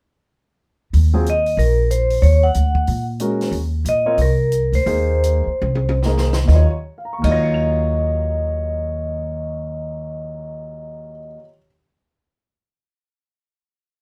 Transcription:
0.93 D#2, open hi-hat
1.13 F#3 C4 F4 G#4
1.26 D#5, closed hi-hat
1.46 open hi-hat
1.57 A#1 A#4, open hi-hat
1.91 C5, closed hi-hat
2.10 open hi-hat
2.22 D#2 C#5, open hi-hat
2.43 F#5
2.54 D2, closed hi-hat
2.75 kick
2.87 A#2, open hi-hat
3.20 G#3 C#4 F#4 A#4, closed hi-hat
3.41 snare, open hi-hat
3.52 D#2, open hi-hat
3.85 A#2 D#5, closed hi-hat
4.06 C4 F4 A#4 C#5
4.18 C2, open hi-hat
4.22 A#4
4.52 closed hi-hat
4.72 D2 C5, open hi-hat
4.86 D#2 A#3 D#4 G#4 C5, open hi-hat
5.24 closed hi-hat
5.47 muted upright bass stroke
5.62 C2, high tom
5.75 high tom
5.89 high tom
6.03 A#3 D#4 G#4 D#5, snare
6.18 snare
6.33 snare
6.44 D#2 D#3 D#5
6.48 D#2 F#3, kick, snare
6.53 F4 C#5
6.98 F5
7.05 A#5
7.13 C#6
7.18 D#2 D#3 F6
7.24 D#2 F#3 F4 D#5, kick, crash
7.31 C#5 A#6
7.43 C#7
7.54 F7

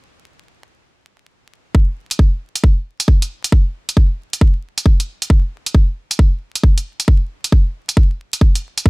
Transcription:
1.75 kick
2.11 closed hi-hat
2.19 kick
2.55 closed hi-hat
2.64 kick
3.00 closed hi-hat
3.08 kick
3.22 closed hi-hat
3.44 closed hi-hat
3.52 kick
3.89 closed hi-hat
3.97 kick
4.33 closed hi-hat
4.41 kick
4.78 closed hi-hat
4.86 kick
5.00 closed hi-hat
5.22 closed hi-hat
5.30 kick
5.66 closed hi-hat
5.75 kick
6.11 closed hi-hat
6.19 kick
6.55 closed hi-hat
6.63 kick
6.78 closed hi-hat
7.00 closed hi-hat
7.08 kick
7.44 closed hi-hat
7.52 kick
7.89 closed hi-hat
7.97 kick
8.33 closed hi-hat
8.41 kick
8.55 closed hi-hat
8.78 closed hi-hat
8.86 kick

